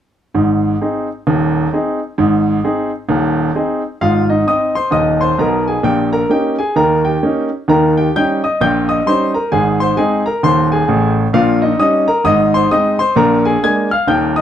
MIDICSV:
0, 0, Header, 1, 2, 480
1, 0, Start_track
1, 0, Key_signature, -4, "major"
1, 0, Tempo, 458015
1, 357, Time_signature, 4, 2, 24, 8
1, 15106, End_track
2, 0, Start_track
2, 0, Title_t, "Grand piano"
2, 0, Program_c, 0, 0
2, 361, Note_on_c, 0, 32, 55
2, 362, Note_on_c, 0, 44, 62
2, 769, Note_off_c, 0, 32, 0
2, 770, Note_off_c, 0, 44, 0
2, 853, Note_on_c, 0, 60, 40
2, 854, Note_on_c, 0, 63, 38
2, 857, Note_on_c, 0, 68, 39
2, 1114, Note_off_c, 0, 60, 0
2, 1115, Note_off_c, 0, 63, 0
2, 1118, Note_off_c, 0, 68, 0
2, 1330, Note_on_c, 0, 27, 64
2, 1330, Note_on_c, 0, 39, 63
2, 1736, Note_off_c, 0, 27, 0
2, 1736, Note_off_c, 0, 39, 0
2, 1813, Note_on_c, 0, 60, 42
2, 1818, Note_on_c, 0, 63, 47
2, 1822, Note_on_c, 0, 68, 43
2, 2075, Note_off_c, 0, 60, 0
2, 2079, Note_off_c, 0, 63, 0
2, 2081, Note_off_c, 0, 68, 0
2, 2285, Note_on_c, 0, 44, 76
2, 2287, Note_on_c, 0, 32, 62
2, 2694, Note_off_c, 0, 44, 0
2, 2696, Note_off_c, 0, 32, 0
2, 2767, Note_on_c, 0, 60, 43
2, 2773, Note_on_c, 0, 63, 44
2, 2774, Note_on_c, 0, 68, 52
2, 3032, Note_off_c, 0, 60, 0
2, 3036, Note_off_c, 0, 63, 0
2, 3036, Note_off_c, 0, 68, 0
2, 3234, Note_on_c, 0, 27, 71
2, 3236, Note_on_c, 0, 39, 67
2, 3649, Note_off_c, 0, 27, 0
2, 3650, Note_off_c, 0, 39, 0
2, 3722, Note_on_c, 0, 60, 43
2, 3728, Note_on_c, 0, 68, 42
2, 3729, Note_on_c, 0, 63, 45
2, 3988, Note_off_c, 0, 60, 0
2, 3993, Note_off_c, 0, 68, 0
2, 3994, Note_off_c, 0, 63, 0
2, 4205, Note_on_c, 0, 32, 49
2, 4205, Note_on_c, 0, 44, 63
2, 4206, Note_on_c, 0, 77, 71
2, 4221, Note_on_c, 0, 65, 51
2, 4457, Note_off_c, 0, 77, 0
2, 4488, Note_off_c, 0, 65, 0
2, 4502, Note_on_c, 0, 75, 57
2, 4509, Note_on_c, 0, 63, 38
2, 4615, Note_off_c, 0, 32, 0
2, 4616, Note_off_c, 0, 44, 0
2, 4662, Note_off_c, 0, 75, 0
2, 4670, Note_off_c, 0, 63, 0
2, 4682, Note_on_c, 0, 60, 37
2, 4686, Note_on_c, 0, 63, 38
2, 4692, Note_on_c, 0, 87, 73
2, 4703, Note_on_c, 0, 75, 53
2, 4940, Note_off_c, 0, 87, 0
2, 4949, Note_off_c, 0, 60, 0
2, 4952, Note_off_c, 0, 63, 0
2, 4970, Note_off_c, 0, 75, 0
2, 4982, Note_on_c, 0, 84, 69
2, 4994, Note_on_c, 0, 72, 45
2, 5142, Note_off_c, 0, 84, 0
2, 5145, Note_on_c, 0, 39, 57
2, 5150, Note_on_c, 0, 27, 53
2, 5156, Note_on_c, 0, 87, 75
2, 5164, Note_off_c, 0, 72, 0
2, 5167, Note_on_c, 0, 75, 62
2, 5411, Note_off_c, 0, 87, 0
2, 5441, Note_off_c, 0, 75, 0
2, 5457, Note_on_c, 0, 84, 68
2, 5470, Note_on_c, 0, 72, 52
2, 5564, Note_off_c, 0, 39, 0
2, 5567, Note_off_c, 0, 27, 0
2, 5620, Note_off_c, 0, 84, 0
2, 5642, Note_off_c, 0, 72, 0
2, 5642, Note_on_c, 0, 47, 58
2, 5644, Note_on_c, 0, 35, 56
2, 5651, Note_on_c, 0, 82, 68
2, 5666, Note_on_c, 0, 70, 57
2, 5900, Note_off_c, 0, 82, 0
2, 5931, Note_off_c, 0, 70, 0
2, 5948, Note_on_c, 0, 80, 57
2, 5959, Note_on_c, 0, 68, 43
2, 6030, Note_off_c, 0, 47, 0
2, 6031, Note_off_c, 0, 35, 0
2, 6106, Note_off_c, 0, 80, 0
2, 6112, Note_on_c, 0, 46, 57
2, 6117, Note_on_c, 0, 34, 53
2, 6122, Note_on_c, 0, 79, 72
2, 6127, Note_off_c, 0, 68, 0
2, 6141, Note_on_c, 0, 67, 51
2, 6375, Note_off_c, 0, 79, 0
2, 6409, Note_off_c, 0, 67, 0
2, 6421, Note_on_c, 0, 82, 71
2, 6427, Note_on_c, 0, 70, 55
2, 6528, Note_off_c, 0, 46, 0
2, 6532, Note_off_c, 0, 34, 0
2, 6582, Note_off_c, 0, 82, 0
2, 6596, Note_on_c, 0, 58, 38
2, 6600, Note_off_c, 0, 70, 0
2, 6603, Note_on_c, 0, 61, 37
2, 6608, Note_on_c, 0, 63, 40
2, 6611, Note_on_c, 0, 79, 63
2, 6615, Note_on_c, 0, 67, 52
2, 6860, Note_off_c, 0, 79, 0
2, 6865, Note_off_c, 0, 58, 0
2, 6869, Note_off_c, 0, 61, 0
2, 6873, Note_off_c, 0, 63, 0
2, 6885, Note_off_c, 0, 67, 0
2, 6902, Note_on_c, 0, 80, 65
2, 6913, Note_on_c, 0, 68, 49
2, 7062, Note_off_c, 0, 80, 0
2, 7081, Note_on_c, 0, 51, 58
2, 7083, Note_off_c, 0, 68, 0
2, 7085, Note_on_c, 0, 39, 57
2, 7089, Note_on_c, 0, 82, 75
2, 7106, Note_on_c, 0, 70, 58
2, 7338, Note_off_c, 0, 82, 0
2, 7371, Note_off_c, 0, 70, 0
2, 7385, Note_on_c, 0, 79, 55
2, 7401, Note_on_c, 0, 67, 47
2, 7494, Note_off_c, 0, 51, 0
2, 7496, Note_off_c, 0, 39, 0
2, 7576, Note_on_c, 0, 58, 36
2, 7577, Note_on_c, 0, 61, 41
2, 7579, Note_on_c, 0, 63, 43
2, 7792, Note_off_c, 0, 79, 0
2, 7839, Note_off_c, 0, 58, 0
2, 7839, Note_off_c, 0, 61, 0
2, 7839, Note_off_c, 0, 67, 0
2, 7841, Note_off_c, 0, 63, 0
2, 8049, Note_on_c, 0, 39, 59
2, 8053, Note_on_c, 0, 51, 65
2, 8063, Note_on_c, 0, 82, 68
2, 8070, Note_on_c, 0, 70, 52
2, 8306, Note_off_c, 0, 82, 0
2, 8333, Note_off_c, 0, 70, 0
2, 8358, Note_on_c, 0, 79, 66
2, 8370, Note_on_c, 0, 67, 51
2, 8457, Note_off_c, 0, 39, 0
2, 8460, Note_off_c, 0, 51, 0
2, 8511, Note_off_c, 0, 79, 0
2, 8532, Note_off_c, 0, 67, 0
2, 8550, Note_on_c, 0, 55, 39
2, 8553, Note_on_c, 0, 91, 84
2, 8554, Note_on_c, 0, 61, 42
2, 8557, Note_on_c, 0, 63, 43
2, 8562, Note_on_c, 0, 79, 62
2, 8792, Note_off_c, 0, 91, 0
2, 8809, Note_off_c, 0, 55, 0
2, 8811, Note_off_c, 0, 61, 0
2, 8813, Note_off_c, 0, 63, 0
2, 8819, Note_off_c, 0, 79, 0
2, 8843, Note_on_c, 0, 87, 68
2, 8848, Note_on_c, 0, 75, 54
2, 8994, Note_off_c, 0, 87, 0
2, 9010, Note_off_c, 0, 75, 0
2, 9021, Note_on_c, 0, 34, 68
2, 9023, Note_on_c, 0, 46, 59
2, 9027, Note_on_c, 0, 91, 81
2, 9039, Note_on_c, 0, 79, 61
2, 9268, Note_off_c, 0, 91, 0
2, 9297, Note_off_c, 0, 79, 0
2, 9315, Note_on_c, 0, 87, 72
2, 9324, Note_on_c, 0, 75, 49
2, 9424, Note_off_c, 0, 34, 0
2, 9425, Note_off_c, 0, 46, 0
2, 9469, Note_off_c, 0, 87, 0
2, 9488, Note_off_c, 0, 75, 0
2, 9495, Note_on_c, 0, 55, 42
2, 9501, Note_on_c, 0, 63, 49
2, 9505, Note_on_c, 0, 61, 39
2, 9507, Note_on_c, 0, 84, 79
2, 9517, Note_on_c, 0, 72, 59
2, 9747, Note_off_c, 0, 84, 0
2, 9757, Note_off_c, 0, 55, 0
2, 9762, Note_off_c, 0, 63, 0
2, 9765, Note_off_c, 0, 61, 0
2, 9776, Note_off_c, 0, 72, 0
2, 9793, Note_on_c, 0, 82, 59
2, 9805, Note_on_c, 0, 70, 42
2, 9947, Note_off_c, 0, 82, 0
2, 9968, Note_off_c, 0, 70, 0
2, 9974, Note_on_c, 0, 44, 71
2, 9976, Note_on_c, 0, 80, 76
2, 9977, Note_on_c, 0, 32, 66
2, 9986, Note_on_c, 0, 68, 59
2, 10221, Note_off_c, 0, 80, 0
2, 10249, Note_off_c, 0, 68, 0
2, 10273, Note_on_c, 0, 84, 77
2, 10290, Note_on_c, 0, 72, 60
2, 10379, Note_off_c, 0, 44, 0
2, 10380, Note_off_c, 0, 32, 0
2, 10427, Note_off_c, 0, 84, 0
2, 10443, Note_on_c, 0, 56, 46
2, 10444, Note_on_c, 0, 60, 46
2, 10450, Note_off_c, 0, 72, 0
2, 10452, Note_on_c, 0, 80, 74
2, 10457, Note_on_c, 0, 63, 46
2, 10465, Note_on_c, 0, 68, 61
2, 10698, Note_off_c, 0, 80, 0
2, 10708, Note_off_c, 0, 56, 0
2, 10708, Note_off_c, 0, 60, 0
2, 10718, Note_off_c, 0, 63, 0
2, 10728, Note_off_c, 0, 68, 0
2, 10751, Note_on_c, 0, 82, 70
2, 10765, Note_on_c, 0, 70, 49
2, 10905, Note_off_c, 0, 82, 0
2, 10927, Note_off_c, 0, 70, 0
2, 10934, Note_on_c, 0, 39, 69
2, 10935, Note_on_c, 0, 27, 65
2, 10940, Note_on_c, 0, 84, 81
2, 10953, Note_on_c, 0, 72, 57
2, 11182, Note_off_c, 0, 84, 0
2, 11212, Note_off_c, 0, 72, 0
2, 11234, Note_on_c, 0, 80, 68
2, 11246, Note_on_c, 0, 68, 52
2, 11338, Note_off_c, 0, 27, 0
2, 11338, Note_off_c, 0, 39, 0
2, 11405, Note_on_c, 0, 45, 65
2, 11409, Note_on_c, 0, 33, 67
2, 11634, Note_off_c, 0, 80, 0
2, 11678, Note_off_c, 0, 68, 0
2, 11788, Note_off_c, 0, 45, 0
2, 11790, Note_off_c, 0, 33, 0
2, 11877, Note_on_c, 0, 34, 63
2, 11882, Note_on_c, 0, 46, 68
2, 11884, Note_on_c, 0, 77, 80
2, 11897, Note_on_c, 0, 65, 60
2, 12132, Note_off_c, 0, 77, 0
2, 12162, Note_off_c, 0, 65, 0
2, 12177, Note_on_c, 0, 75, 64
2, 12190, Note_on_c, 0, 63, 48
2, 12287, Note_off_c, 0, 34, 0
2, 12290, Note_off_c, 0, 46, 0
2, 12335, Note_off_c, 0, 75, 0
2, 12350, Note_off_c, 0, 63, 0
2, 12361, Note_on_c, 0, 55, 44
2, 12361, Note_on_c, 0, 61, 49
2, 12361, Note_on_c, 0, 87, 83
2, 12366, Note_on_c, 0, 63, 45
2, 12381, Note_on_c, 0, 75, 57
2, 12610, Note_off_c, 0, 87, 0
2, 12625, Note_off_c, 0, 55, 0
2, 12625, Note_off_c, 0, 61, 0
2, 12628, Note_off_c, 0, 63, 0
2, 12644, Note_off_c, 0, 75, 0
2, 12657, Note_on_c, 0, 82, 69
2, 12664, Note_on_c, 0, 70, 55
2, 12815, Note_off_c, 0, 82, 0
2, 12831, Note_on_c, 0, 32, 67
2, 12833, Note_off_c, 0, 70, 0
2, 12835, Note_on_c, 0, 87, 90
2, 12838, Note_on_c, 0, 44, 75
2, 12856, Note_on_c, 0, 75, 71
2, 13086, Note_off_c, 0, 87, 0
2, 13120, Note_off_c, 0, 75, 0
2, 13144, Note_on_c, 0, 84, 77
2, 13156, Note_on_c, 0, 72, 56
2, 13242, Note_off_c, 0, 32, 0
2, 13246, Note_off_c, 0, 44, 0
2, 13298, Note_off_c, 0, 84, 0
2, 13319, Note_off_c, 0, 72, 0
2, 13323, Note_on_c, 0, 56, 45
2, 13324, Note_on_c, 0, 63, 43
2, 13324, Note_on_c, 0, 87, 82
2, 13326, Note_on_c, 0, 60, 45
2, 13336, Note_on_c, 0, 75, 65
2, 13570, Note_off_c, 0, 87, 0
2, 13585, Note_off_c, 0, 56, 0
2, 13586, Note_off_c, 0, 63, 0
2, 13587, Note_off_c, 0, 60, 0
2, 13599, Note_off_c, 0, 75, 0
2, 13615, Note_on_c, 0, 84, 75
2, 13626, Note_on_c, 0, 72, 60
2, 13772, Note_off_c, 0, 84, 0
2, 13789, Note_on_c, 0, 34, 66
2, 13792, Note_on_c, 0, 46, 70
2, 13793, Note_off_c, 0, 72, 0
2, 13801, Note_on_c, 0, 82, 73
2, 13807, Note_on_c, 0, 70, 66
2, 14047, Note_off_c, 0, 82, 0
2, 14073, Note_off_c, 0, 70, 0
2, 14100, Note_on_c, 0, 80, 76
2, 14110, Note_on_c, 0, 68, 63
2, 14199, Note_off_c, 0, 34, 0
2, 14201, Note_off_c, 0, 46, 0
2, 14254, Note_off_c, 0, 80, 0
2, 14274, Note_off_c, 0, 68, 0
2, 14286, Note_on_c, 0, 56, 46
2, 14289, Note_on_c, 0, 58, 40
2, 14293, Note_on_c, 0, 92, 85
2, 14294, Note_on_c, 0, 62, 42
2, 14307, Note_on_c, 0, 80, 63
2, 14533, Note_off_c, 0, 92, 0
2, 14546, Note_off_c, 0, 56, 0
2, 14548, Note_off_c, 0, 58, 0
2, 14552, Note_off_c, 0, 62, 0
2, 14563, Note_off_c, 0, 80, 0
2, 14582, Note_on_c, 0, 89, 74
2, 14598, Note_on_c, 0, 77, 56
2, 14735, Note_off_c, 0, 89, 0
2, 14749, Note_on_c, 0, 27, 63
2, 14752, Note_on_c, 0, 39, 69
2, 14756, Note_on_c, 0, 91, 76
2, 14758, Note_off_c, 0, 77, 0
2, 14774, Note_on_c, 0, 79, 62
2, 15002, Note_off_c, 0, 91, 0
2, 15036, Note_off_c, 0, 79, 0
2, 15052, Note_on_c, 0, 87, 81
2, 15064, Note_on_c, 0, 75, 55
2, 15106, Note_off_c, 0, 27, 0
2, 15106, Note_off_c, 0, 39, 0
2, 15106, Note_off_c, 0, 75, 0
2, 15106, Note_off_c, 0, 87, 0
2, 15106, End_track
0, 0, End_of_file